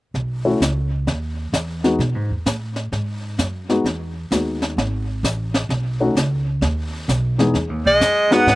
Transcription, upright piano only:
0.45 A3 C#4 E4 F#4
1.84 G#3 B3 D#4 F#4
3.69 G#3 B3 D#4 F#4
4.32 G#3 B3 D#4 F#4
6.00 A3 C#4 D#4 F#4
7.38 E2 G#3 B3 D#4 G#4
8.31 G#3 B3 D#4 F#4

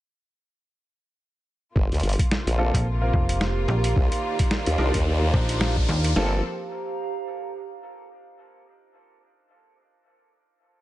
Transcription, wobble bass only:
1.76 G1
1.92 D2
2.03 G1
2.46 A#1
3.96 C2
4.67 D#2
4.79 C2
4.94 D#2
6.16 G1

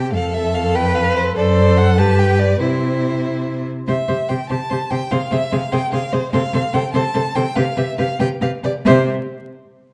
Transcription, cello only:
Already playing: C3
0.13 F2
1.37 F#2
1.98 G2
2.61 C3
3.88 C3
4.08 C3
4.30 C3
4.50 C3
4.71 C3
4.91 C3
5.12 C3
5.32 C3
5.52 C3
5.72 C3
5.93 C3
6.13 C3
6.33 C3
6.53 C3
6.74 C3
6.94 C3
7.15 C3
7.36 C3
7.57 C3
7.77 C3
7.99 C3
8.20 C3
8.41 C3
8.64 C3
8.85 C3

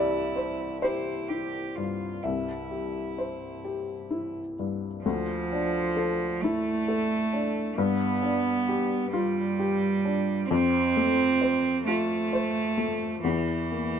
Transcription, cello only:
Already playing: E4
0.83 E4
1.29 G4
1.75 F4
2.23 E4
5.04 F3
6.41 A3
7.78 B3
9.12 G3
10.49 C4
11.87 A3
13.23 E3

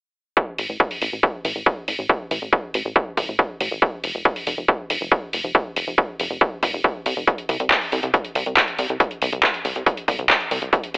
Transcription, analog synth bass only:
0.58 A1
0.69 A1
1.02 A1
1.12 A1
1.45 A1
1.55 A1
1.88 A1
1.99 A1
2.31 A1
2.42 A1
2.74 A1
2.85 A1
3.17 A1
3.28 A1
3.60 A1
3.71 A1
4.04 F1
4.14 F1
4.47 F1
4.58 F1
4.90 F1
5.01 F1
5.33 F1
5.44 F1
5.76 F1
5.87 F1
6.19 F1
6.30 F1
6.63 F1
6.73 F1
7.06 C2
7.17 F1
7.49 C2
7.60 C2
7.92 C2
8.03 C2
8.35 C2
8.46 C2
8.79 C2
8.89 C2
9.22 C2
9.32 C2
9.65 C2
9.76 C2
10.08 C2
10.19 C2
10.51 C2
10.62 C2
10.94 C2

